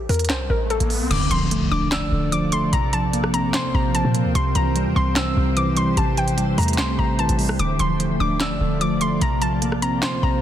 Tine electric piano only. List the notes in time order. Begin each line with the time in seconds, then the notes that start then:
1.11 D3
1.31 F3
1.51 A3
1.72 D4
1.92 D5
2.12 D3
2.32 F3
2.53 A3
2.73 C3
2.93 F3
3.13 A#3
3.34 C4
3.54 C5
3.74 C3
3.94 F3
4.15 A#3
4.35 C3
4.55 E3
4.76 G3
4.96 C4
5.16 C5
5.36 C3
5.56 E3
5.77 G3
5.97 C3
6.17 E3
6.38 G3
6.58 A3
6.78 C4
6.99 C3
7.19 E3
7.39 G3
7.59 D3
7.80 F3
8.00 A3
8.20 D4
8.40 D5
8.61 D3
8.81 F3
9.01 A3
9.21 C3
9.42 F3
9.62 A#3
9.82 C4
10.02 C5
10.23 C3